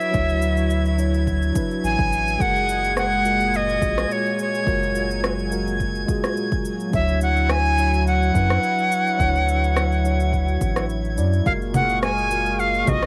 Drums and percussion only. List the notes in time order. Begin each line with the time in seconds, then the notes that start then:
0.01 shaker
0.14 kick, shaker
0.29 shaker
0.42 shaker
0.57 shaker
0.70 shaker
0.85 shaker
0.98 shaker
1.14 shaker
1.27 kick, shaker
1.42 shaker
1.55 kick, shaker
1.71 shaker
1.84 shaker
1.99 kick, shaker
2.13 shaker
2.28 shaker
2.40 kick, shaker
2.56 shaker
2.69 shaker
2.84 shaker
2.97 cross-stick, shaker
3.12 shaker
3.25 shaker
3.40 shaker
3.54 shaker
3.69 shaker
3.82 kick, shaker
3.98 cross-stick, shaker
4.11 shaker
4.26 shaker
4.39 shaker
4.55 shaker
4.67 kick, shaker
4.83 shaker
4.95 shaker
5.11 shaker
5.24 cross-stick, shaker
5.39 shaker
5.52 shaker
5.68 shaker
5.80 kick, shaker
5.95 shaker
6.08 kick, shaker
6.24 cross-stick, shaker
6.37 shaker
6.52 kick, shaker
6.65 shaker
6.80 shaker
6.93 kick, shaker
7.08 shaker
7.21 shaker
7.37 shaker
7.50 cross-stick, shaker
7.65 shaker
7.78 shaker
7.94 shaker
8.07 shaker
8.22 shaker
8.35 kick, shaker
8.50 cross-stick, shaker
8.63 shaker
8.78 shaker
8.92 shaker
9.07 shaker
9.20 kick, shaker
9.36 shaker
9.49 shaker
9.64 shaker
9.77 cross-stick, shaker
9.92 shaker
10.05 shaker
10.20 shaker
10.33 kick, shaker
10.48 shaker
10.61 kick, shaker
10.76 cross-stick, shaker
10.90 shaker
11.05 shaker
11.18 shaker
11.33 shaker
11.46 kick, shaker
11.62 shaker
11.74 low conga, shaker
11.90 shaker
12.03 cross-stick, shaker
12.18 shaker
12.31 shaker
12.46 shaker
12.60 shaker
12.74 shaker
12.87 kick, low conga, shaker
13.03 cross-stick, shaker